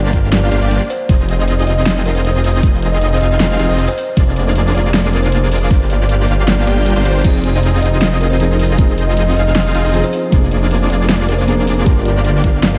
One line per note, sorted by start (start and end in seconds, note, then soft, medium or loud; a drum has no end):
0.00 0.11 G1 medium
0.00 0.11 A#3 loud
0.00 0.11 D4 medium
0.00 0.11 F4 medium
0.00 0.11 G4 medium
0.00 0.11 D5 loud
0.13 0.50 G1 loud
0.13 0.50 A#3 medium
0.13 0.50 D4 medium
0.13 0.50 F4 medium
0.13 0.50 G4 medium
0.13 0.50 F5 medium
0.13 kick medium
0.13 closed hi-hat medium
0.32 0.50 D5 medium
0.32 snare loud
0.32 closed hi-hat medium
0.51 0.59 G1 loud
0.51 0.60 A#3 loud
0.51 0.60 D4 medium
0.51 0.60 F4 medium
0.51 0.60 G4 medium
0.51 0.67 D5 medium
0.51 0.60 F5 loud
0.51 closed hi-hat medium
0.61 0.79 G1 loud
0.61 0.81 A#3 medium
0.61 0.81 D4 medium
0.61 0.81 F4 medium
0.61 0.81 G4 medium
0.61 0.81 D5 medium
0.71 closed hi-hat medium
0.90 1.13 C5 loud
0.90 open hi-hat medium
1.09 1.65 F1 medium
1.09 1.65 C4 medium
1.09 1.65 D#4 medium
1.09 1.65 F4 medium
1.09 1.65 G#4 medium
1.09 1.65 D#5 loud
1.09 kick loud
1.09 closed hi-hat medium
1.09 ride soft
1.29 closed hi-hat medium
1.48 closed hi-hat medium
1.67 2.61 F1 loud
1.67 2.61 C4 medium
1.67 2.61 D#4 medium
1.67 2.61 F4 medium
1.67 2.61 G#4 medium
1.67 2.61 D#5 medium
1.67 1.82 D#5 medium
1.67 closed hi-hat medium
1.86 snare loud
1.86 closed hi-hat medium
1.86 ride soft
2.05 2.13 A#4 loud
2.05 closed hi-hat medium
2.15 2.21 C5 medium
2.24 2.31 C5 medium
2.24 closed hi-hat medium
2.44 open hi-hat medium
2.63 3.19 F1 loud
2.63 3.19 F4 medium
2.63 3.18 D#5 loud
2.63 kick loud
2.63 closed hi-hat medium
2.63 ride soft
2.82 closed hi-hat medium
2.92 2.98 D#5 medium
3.01 3.08 D#5 medium
3.01 closed hi-hat medium
3.21 3.57 F1 medium
3.21 3.57 C4 medium
3.21 3.57 D#4 medium
3.21 3.57 F4 medium
3.21 3.57 G#4 medium
3.21 3.36 D#5 medium
3.21 3.57 F5 medium
3.21 closed hi-hat medium
3.40 snare loud
3.40 closed hi-hat medium
3.40 ride soft
3.59 3.67 F1 loud
3.59 3.67 C4 loud
3.59 3.67 D#4 medium
3.59 3.67 F4 medium
3.59 3.67 G#4 medium
3.59 3.67 F5 loud
3.59 closed hi-hat medium
3.69 3.87 F1 loud
3.69 3.89 C4 medium
3.69 3.89 D#4 medium
3.69 3.89 F4 medium
3.69 3.89 G#4 medium
3.69 3.89 D#5 loud
3.79 closed hi-hat medium
3.88 3.94 C5 loud
3.98 4.04 C5 medium
3.98 open hi-hat medium
4.17 4.73 F1 medium
4.17 4.72 A#3 medium
4.17 4.72 D4 medium
4.17 4.72 F4 medium
4.17 4.72 G#4 medium
4.17 4.72 D5 loud
4.17 kick loud
4.17 closed hi-hat medium
4.17 ride medium
4.36 closed hi-hat medium
4.55 closed hi-hat medium
4.74 5.72 F1 loud
4.74 5.68 A#3 medium
4.74 5.68 D4 medium
4.74 5.68 F4 medium
4.74 5.68 G#4 medium
4.74 5.68 D5 medium
4.74 4.90 D5 medium
4.74 closed hi-hat medium
4.94 snare loud
4.94 closed hi-hat medium
4.94 ride soft
5.13 5.21 A#4 medium
5.13 closed hi-hat medium
5.23 5.29 C5 medium
5.32 5.38 C5 medium
5.32 closed hi-hat medium
5.51 open hi-hat medium
5.71 6.27 G1 medium
5.71 6.26 F4 medium
5.71 kick loud
5.71 closed hi-hat medium
5.71 ride soft
5.90 5.96 D5 medium
5.90 closed hi-hat medium
6.00 6.06 D5 medium
6.09 closed hi-hat medium
6.28 6.65 G1 loud
6.28 6.65 A#3 medium
6.28 6.65 D4 medium
6.28 6.65 F4 medium
6.28 6.65 G4 medium
6.28 6.65 F5 medium
6.28 closed hi-hat medium
6.48 6.65 D5 medium
6.48 snare loud
6.48 closed hi-hat medium
6.48 ride soft
6.67 6.94 G1 loud
6.67 6.94 A#3 medium
6.67 6.94 D4 medium
6.67 6.94 F4 medium
6.67 6.94 G4 medium
6.67 6.82 D5 medium
6.67 6.94 G5 medium
6.67 closed hi-hat medium
6.86 closed hi-hat medium
6.96 7.23 G1 loud
6.96 7.22 A#3 medium
6.96 7.22 D4 medium
6.96 7.22 F4 medium
6.96 7.22 G4 medium
6.96 7.22 C5 medium
7.05 7.28 C5 medium
7.05 open hi-hat medium
7.23 7.80 F1 medium
7.23 8.37 F3 medium
7.23 8.37 C4 medium
7.23 7.80 D#4 medium
7.23 8.38 D#4 medium
7.23 7.80 F4 medium
7.23 7.80 G#4 medium
7.23 kick loud
7.23 closed hi-hat medium
7.23 crash medium
7.23 ride soft
7.27 8.39 G#4 loud
7.44 closed hi-hat medium
7.63 closed hi-hat medium
7.82 8.77 F1 loud
7.82 8.76 C4 medium
7.82 8.76 D#4 medium
7.82 8.76 F4 medium
7.82 8.76 G#4 medium
7.82 7.97 D#5 medium
7.82 8.76 D#5 medium
7.82 closed hi-hat medium
8.01 snare loud
8.01 closed hi-hat medium
8.01 ride soft
8.21 8.29 A#4 medium
8.21 closed hi-hat medium
8.30 8.37 C5 medium
8.39 8.75 F3 loud
8.39 8.76 C4 medium
8.39 8.76 D#4 medium
8.39 8.77 G#4 loud
8.39 8.46 C5 medium
8.39 closed hi-hat medium
8.59 open hi-hat loud
8.77 9.34 F1 medium
8.77 9.91 F3 loud
8.77 9.91 C4 medium
8.77 9.34 C4 loud
8.77 9.34 D#4 medium
8.77 9.92 D#4 medium
8.77 9.34 F4 medium
8.77 9.34 G#4 medium
8.77 9.34 D#5 loud
8.77 kick loud
8.77 closed hi-hat medium
8.77 ride soft
8.81 9.93 G#4 loud
8.98 closed hi-hat medium
9.08 9.14 D#5 medium
9.17 9.23 D#5 medium
9.17 closed hi-hat medium
9.36 9.73 F1 loud
9.36 9.73 C4 medium
9.36 9.73 D#4 medium
9.36 9.73 F4 medium
9.36 9.73 G#4 medium
9.36 9.51 D#5 medium
9.36 9.73 F5 medium
9.36 closed hi-hat medium
9.55 snare loud
9.55 closed hi-hat medium
9.55 ride soft
9.75 9.82 F1 loud
9.75 9.83 C4 loud
9.75 9.83 D#4 medium
9.75 9.83 F4 medium
9.75 9.83 G#4 medium
9.75 9.83 F5 loud
9.75 closed hi-hat medium
9.84 10.02 F1 loud
9.84 10.04 C4 medium
9.84 10.04 D#4 medium
9.84 10.04 F4 medium
9.84 10.04 G#4 medium
9.84 10.04 D#5 loud
9.93 10.30 F3 loud
9.93 10.30 C4 medium
9.93 10.30 D#4 medium
9.93 10.31 G#4 loud
9.93 closed hi-hat medium
10.04 10.10 C5 loud
10.13 10.19 C5 medium
10.13 open hi-hat medium
10.30 10.88 F1 medium
10.30 11.44 A#3 medium
10.30 10.88 A#3 medium
10.30 11.45 D4 medium
10.30 10.88 D4 medium
10.30 10.88 F4 medium
10.30 10.88 G#4 medium
10.30 10.88 D5 loud
10.30 kick loud
10.30 closed hi-hat medium
10.30 ride soft
10.34 11.46 G#4 loud
10.51 closed hi-hat medium
10.71 closed hi-hat medium
10.90 11.84 F1 medium
10.90 11.84 A#3 medium
10.90 11.84 D4 medium
10.90 11.84 F4 medium
10.90 11.84 G#4 medium
10.90 11.05 D5 medium
10.90 11.84 D5 medium
10.90 closed hi-hat medium
11.09 snare loud
11.09 closed hi-hat medium
11.09 ride soft
11.28 11.36 A#4 medium
11.28 closed hi-hat medium
11.38 11.44 C5 medium
11.47 11.83 A#3 loud
11.47 11.84 D4 medium
11.47 11.84 G#4 loud
11.47 closed hi-hat medium
11.67 open hi-hat medium
11.84 12.42 G1 medium
11.84 12.78 G3 medium
11.84 12.78 D4 medium
11.84 12.42 D4 medium
11.84 12.78 F4 medium
11.84 12.78 A#4 loud
11.84 12.42 D5 loud
11.84 kick loud
11.84 closed hi-hat medium
11.84 ride soft
12.05 12.12 D5 loud
12.05 closed hi-hat medium
12.15 12.21 D5 medium
12.24 closed hi-hat medium
12.44 12.78 G1 medium
12.44 12.78 A#3 medium
12.44 12.78 D4 medium
12.44 12.78 F4 medium
12.44 12.78 G4 medium
12.44 12.78 F5 medium
12.44 kick medium
12.44 closed hi-hat medium
12.63 12.78 D5 medium
12.63 snare loud
12.63 closed hi-hat medium
12.63 ride soft